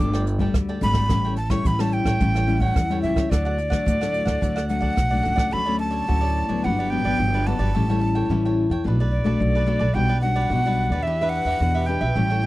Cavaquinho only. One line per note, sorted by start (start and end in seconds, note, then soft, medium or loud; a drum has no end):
0.00 0.11 D4 soft
0.00 0.12 A4 soft
0.00 0.12 D5 soft
0.00 0.12 G5 soft
0.14 0.40 A4 medium
0.14 0.40 D5 medium
0.14 0.39 G5 medium
0.40 0.54 A4 medium
0.40 0.54 D5 medium
0.40 0.53 G5 medium
0.56 muted cavaquinho stroke soft
0.69 0.82 A4 medium
0.69 0.81 D5 medium
0.69 0.81 G5 medium
0.83 0.95 D4 soft
0.83 0.95 A4 soft
0.83 0.95 D5 medium
0.83 0.94 G5 soft
0.95 1.09 A4 medium
0.95 1.09 D5 medium
0.95 1.08 G5 medium
1.11 1.23 G4 soft
1.11 1.24 A4 soft
1.11 1.24 C#5 soft
1.11 1.23 G5 soft
1.25 1.37 A4 medium
1.25 1.37 C#5 medium
1.25 1.37 G5 medium
1.38 muted cavaquinho stroke soft
1.51 1.64 A4 medium
1.51 1.64 C#5 medium
1.51 1.64 G5 medium
1.66 1.78 G4 soft
1.66 1.79 A4 soft
1.66 1.79 C#5 soft
1.66 1.79 G5 medium
1.80 2.06 A4 medium
1.80 2.06 C#5 medium
1.80 2.05 G5 medium
2.06 2.20 A4 medium
2.06 2.20 C#5 medium
2.06 2.19 G5 medium
2.21 2.34 G4 soft
2.21 2.34 A4 soft
2.21 2.34 C#5 medium
2.21 2.35 G5 medium
2.36 2.61 A4 medium
2.36 2.61 C#5 medium
2.36 2.60 G5 medium
2.61 2.75 A4 medium
2.61 2.75 C#5 medium
2.61 2.75 G5 medium
2.77 muted cavaquinho stroke soft
2.91 3.03 A4 medium
2.91 3.03 C#5 medium
2.91 3.03 G5 medium
3.04 3.16 G4 soft
3.04 3.17 A4 soft
3.04 3.16 C#5 medium
3.04 3.15 G5 medium
3.16 3.30 A4 soft
3.16 3.30 C#5 medium
3.16 3.30 G5 medium
3.31 3.44 D4 soft
3.31 3.44 A4 soft
3.31 3.44 D5 medium
3.31 3.44 F#5 medium
3.45 3.57 A4 medium
3.45 3.57 D5 medium
3.45 3.57 F#5 medium
3.58 muted cavaquinho stroke soft
3.70 3.85 A4 medium
3.70 3.84 D5 medium
3.70 3.84 F#5 medium
3.86 3.99 D4 soft
3.86 3.99 A4 soft
3.86 3.99 D5 soft
3.86 3.99 F#5 soft
4.01 4.25 A4 medium
4.01 4.24 D5 soft
4.01 4.24 F#5 medium
4.25 4.40 A4 medium
4.25 4.40 D5 medium
4.25 4.40 F#5 medium
4.41 4.54 D4 soft
4.41 4.55 A4 soft
4.41 4.55 D5 soft
4.41 4.54 F#5 medium
4.56 4.81 A4 medium
4.56 4.80 D5 medium
4.56 4.79 F#5 medium
4.80 4.95 A4 medium
4.80 4.95 D5 medium
4.80 4.95 F#5 medium
4.96 muted cavaquinho stroke soft
5.10 5.22 A4 medium
5.10 5.22 D5 medium
5.10 5.22 F#5 medium
5.22 5.37 D4 soft
5.22 5.36 A4 soft
5.22 5.35 D5 soft
5.22 5.34 F#5 soft
5.36 5.50 A4 medium
5.36 5.50 D5 medium
5.36 5.50 F#5 medium
5.51 5.65 F#4 soft
5.51 5.65 A4 soft
5.51 5.65 C#5 soft
5.51 5.64 D5 medium
5.65 5.78 A4 medium
5.65 5.78 C#5 medium
5.65 5.79 D5 medium
5.79 muted cavaquinho stroke soft
5.91 6.06 A4 medium
5.91 6.06 C#5 medium
5.91 6.05 D5 medium
6.08 6.21 F#4 soft
6.08 6.21 A4 soft
6.08 6.21 C#5 soft
6.08 6.20 D5 soft
6.21 6.49 A4 medium
6.21 6.48 C#5 medium
6.21 6.47 D5 medium
6.49 6.63 A4 medium
6.49 6.62 C#5 medium
6.49 6.62 D5 medium
6.64 6.76 F#4 soft
6.64 6.77 G4 medium
6.64 6.77 B4 medium
6.64 6.77 D5 medium
6.79 7.05 G4 medium
6.79 7.05 B4 medium
6.79 7.04 D5 medium
7.05 7.18 G4 medium
7.05 7.18 B4 medium
7.05 7.18 D5 medium
7.19 muted cavaquinho stroke soft
7.34 7.46 G4 medium
7.34 7.46 B4 medium
7.34 7.46 D5 medium
7.47 7.59 F#4 medium
7.47 7.59 G4 soft
7.47 7.59 B4 soft
7.47 7.58 D5 medium
7.59 7.73 G4 medium
7.59 7.73 B4 medium
7.59 7.72 D5 medium
7.74 7.87 G4 soft
7.74 7.87 A4 soft
7.74 7.88 C#5 soft
7.74 7.88 G5 medium
7.90 8.00 A4 medium
7.90 8.00 C#5 medium
7.90 8.00 G5 medium
8.01 muted cavaquinho stroke soft
8.15 8.29 A4 medium
8.15 8.28 C#5 medium
8.15 8.28 G5 medium
8.30 8.43 G4 soft
8.30 8.43 A4 soft
8.30 8.43 C#5 medium
8.30 8.43 G5 medium
8.45 8.71 A4 soft
8.45 8.71 C#5 medium
8.45 8.70 G5 medium
8.71 8.84 A4 medium
8.71 8.84 C#5 medium
8.71 8.84 G5 medium
8.87 8.98 D4 soft
8.87 8.99 A4 medium
8.87 8.99 B4 medium
8.87 8.99 D5 medium
9.00 9.26 A4 medium
9.00 9.25 B4 medium
9.00 9.24 D5 medium
9.26 9.39 A4 medium
9.26 9.39 B4 medium
9.26 9.39 D5 medium
9.41 muted cavaquinho stroke soft
9.55 9.66 A4 medium
9.55 9.67 B4 medium
9.55 9.67 D5 medium
9.67 9.80 D4 medium
9.67 9.79 A4 medium
9.67 9.79 B4 medium
9.67 9.78 D5 medium
9.79 9.94 A4 medium
9.79 9.93 B4 medium
9.79 9.93 D5 medium
9.94 10.07 F#4 soft
9.94 10.08 G4 soft
9.94 10.08 B4 medium
9.94 10.08 D5 medium
10.09 10.21 G4 medium
10.09 10.22 B4 medium
10.09 10.22 D5 medium
10.22 muted cavaquinho stroke soft
10.36 10.49 G4 medium
10.36 10.49 B4 medium
10.36 10.49 D5 medium
10.51 10.63 F#4 soft
10.51 10.64 G4 soft
10.51 10.64 B4 medium
10.51 10.64 D5 medium
10.66 10.92 G4 medium
10.66 10.91 B4 medium
10.66 10.91 D5 medium
10.92 11.05 G4 medium
10.92 11.05 B4 medium
10.92 11.04 D5 medium
11.07 11.19 D4 soft
11.07 11.19 G4 medium
11.07 11.19 B4 medium
11.07 11.19 E5 medium
11.22 11.47 G4 medium
11.22 11.46 B4 medium
11.22 11.45 E5 medium
11.46 11.60 G4 medium
11.46 11.60 B4 medium
11.46 11.59 E5 medium
11.62 muted cavaquinho stroke soft
11.75 11.86 G4 medium
11.75 11.87 B4 medium
11.75 11.87 E5 medium
11.87 12.01 D4 soft
11.87 12.01 G4 soft
11.87 12.00 B4 medium
11.87 12.00 E5 soft
12.01 12.15 G4 medium
12.01 12.15 B4 medium
12.01 12.14 E5 medium
12.15 12.29 G4 medium
12.15 12.29 A4 soft
12.15 12.29 C#5 medium
12.15 12.28 G5 medium
12.30 12.42 A4 medium
12.30 12.43 C#5 medium
12.30 12.42 G5 medium